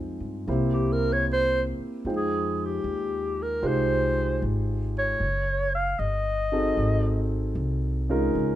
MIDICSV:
0, 0, Header, 1, 5, 480
1, 0, Start_track
1, 0, Key_signature, -4, "minor"
1, 0, Tempo, 786370
1, 1251, Time_signature, 4, 2, 24, 8
1, 5221, End_track
2, 0, Start_track
2, 0, Title_t, "Clarinet"
2, 0, Program_c, 0, 71
2, 447, Note_on_c, 0, 67, 66
2, 563, Note_on_c, 0, 70, 77
2, 572, Note_off_c, 0, 67, 0
2, 690, Note_on_c, 0, 73, 85
2, 699, Note_off_c, 0, 70, 0
2, 771, Note_off_c, 0, 73, 0
2, 810, Note_on_c, 0, 72, 81
2, 990, Note_off_c, 0, 72, 0
2, 1322, Note_on_c, 0, 68, 69
2, 1618, Note_on_c, 0, 67, 66
2, 1627, Note_off_c, 0, 68, 0
2, 2090, Note_on_c, 0, 70, 72
2, 2099, Note_off_c, 0, 67, 0
2, 2243, Note_on_c, 0, 72, 77
2, 2252, Note_off_c, 0, 70, 0
2, 2708, Note_off_c, 0, 72, 0
2, 3042, Note_on_c, 0, 73, 71
2, 3483, Note_off_c, 0, 73, 0
2, 3509, Note_on_c, 0, 77, 77
2, 3658, Note_on_c, 0, 75, 73
2, 3667, Note_off_c, 0, 77, 0
2, 4454, Note_off_c, 0, 75, 0
2, 5221, End_track
3, 0, Start_track
3, 0, Title_t, "Grand piano"
3, 0, Program_c, 1, 0
3, 0, Control_c, 1, 64, 127
3, 0, Note_on_c, 1, 56, 43
3, 0, Note_on_c, 1, 60, 40
3, 0, Note_on_c, 1, 63, 41
3, 0, Note_on_c, 1, 65, 42
3, 0, Note_on_c, 1, 72, 49
3, 282, Note_off_c, 1, 60, 0
3, 288, Note_off_c, 1, 56, 0
3, 289, Note_off_c, 1, 63, 0
3, 290, Note_on_c, 1, 58, 47
3, 291, Note_off_c, 1, 65, 0
3, 291, Note_on_c, 1, 60, 46
3, 292, Note_off_c, 1, 72, 0
3, 297, Control_c, 1, 64, 0
3, 298, Note_on_c, 1, 64, 46
3, 302, Note_on_c, 1, 72, 53
3, 303, Note_on_c, 1, 67, 46
3, 411, Control_c, 1, 64, 127
3, 1252, Note_off_c, 1, 58, 0
3, 1252, Note_off_c, 1, 60, 0
3, 1255, Note_off_c, 1, 64, 0
3, 1255, Note_off_c, 1, 72, 0
3, 1257, Note_on_c, 1, 56, 44
3, 1258, Note_off_c, 1, 67, 0
3, 1258, Control_c, 1, 64, 0
3, 1258, Note_on_c, 1, 63, 40
3, 1259, Note_on_c, 1, 65, 39
3, 1263, Note_on_c, 1, 79, 39
3, 1264, Note_on_c, 1, 72, 45
3, 1372, Control_c, 1, 64, 127
3, 1541, Note_off_c, 1, 56, 0
3, 1542, Note_off_c, 1, 63, 0
3, 1542, Note_off_c, 1, 65, 0
3, 1544, Note_off_c, 1, 72, 0
3, 1544, Note_off_c, 1, 79, 0
3, 2211, Note_on_c, 1, 67, 47
3, 2213, Note_on_c, 1, 56, 52
3, 2215, Note_on_c, 1, 65, 48
3, 2216, Note_on_c, 1, 63, 45
3, 2216, Note_on_c, 1, 72, 59
3, 2499, Note_off_c, 1, 67, 0
3, 2500, Note_off_c, 1, 56, 0
3, 2500, Note_off_c, 1, 65, 0
3, 2501, Note_off_c, 1, 63, 0
3, 2501, Note_off_c, 1, 72, 0
3, 3180, Control_c, 1, 64, 0
3, 3286, Control_c, 1, 64, 127
3, 3979, Note_on_c, 1, 66, 48
3, 3981, Note_on_c, 1, 63, 49
3, 3983, Note_on_c, 1, 60, 48
3, 3984, Note_on_c, 1, 68, 51
3, 3985, Note_on_c, 1, 69, 54
3, 4140, Control_c, 1, 64, 0
3, 4254, Control_c, 1, 64, 127
3, 4584, Note_off_c, 1, 66, 0
3, 4585, Note_off_c, 1, 63, 0
3, 4586, Note_off_c, 1, 60, 0
3, 4586, Note_off_c, 1, 68, 0
3, 4587, Note_off_c, 1, 69, 0
3, 4940, Note_on_c, 1, 61, 51
3, 4941, Note_on_c, 1, 63, 52
3, 4942, Note_on_c, 1, 56, 59
3, 4946, Note_on_c, 1, 65, 55
3, 4949, Note_on_c, 1, 70, 65
3, 5099, Control_c, 1, 64, 0
3, 5212, Control_c, 1, 64, 127
3, 5221, Note_off_c, 1, 56, 0
3, 5221, Note_off_c, 1, 61, 0
3, 5221, Note_off_c, 1, 63, 0
3, 5221, Note_off_c, 1, 65, 0
3, 5221, Note_off_c, 1, 70, 0
3, 5221, End_track
4, 0, Start_track
4, 0, Title_t, "Upright bass"
4, 0, Program_c, 2, 32
4, 0, Note_on_c, 2, 41, 51
4, 119, Note_off_c, 2, 41, 0
4, 124, Note_on_c, 2, 43, 59
4, 275, Note_off_c, 2, 43, 0
4, 290, Note_on_c, 2, 36, 74
4, 1066, Note_off_c, 2, 36, 0
4, 1250, Note_on_c, 2, 41, 60
4, 1716, Note_off_c, 2, 41, 0
4, 1734, Note_on_c, 2, 39, 69
4, 2199, Note_off_c, 2, 39, 0
4, 2213, Note_on_c, 2, 36, 67
4, 2679, Note_off_c, 2, 36, 0
4, 2698, Note_on_c, 2, 32, 70
4, 3162, Note_off_c, 2, 32, 0
4, 3175, Note_on_c, 2, 30, 60
4, 3640, Note_off_c, 2, 30, 0
4, 3656, Note_on_c, 2, 31, 70
4, 4120, Note_off_c, 2, 31, 0
4, 4133, Note_on_c, 2, 32, 69
4, 4598, Note_off_c, 2, 32, 0
4, 4610, Note_on_c, 2, 36, 76
4, 5076, Note_off_c, 2, 36, 0
4, 5098, Note_on_c, 2, 37, 69
4, 5221, Note_off_c, 2, 37, 0
4, 5221, End_track
5, 0, Start_track
5, 0, Title_t, "Muted upright bass strokes"
5, 1089, Note_on_c, 9, 29, 32
5, 1150, Note_off_c, 9, 29, 0
5, 5221, End_track
0, 0, End_of_file